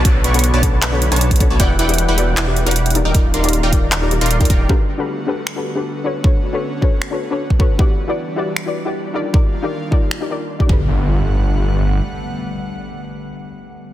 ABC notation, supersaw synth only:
X:1
M:4/4
L:1/16
Q:1/4=155
K:Glyd
V:1 name="Supersaw synth"
[B,cda] z [B,Bcdc']3 [B,Bcda]3 [B,Bcdb]3 [B,Bcda]4 [B,Bcda] | [EBdfg] z [EBdfg]3 [EBdfg]3 [EBdfg]3 [EBdfg]3 z [_E_Bd=fg] | [_E_Bd=fg] z [EBdf=c']3 [EBdfg]3 [EBdf_b]3 [EBdfc']2 [EBdfg] [EBdfg]2 | z16 |
z16 | z16 | z16 | z16 |
z16 |]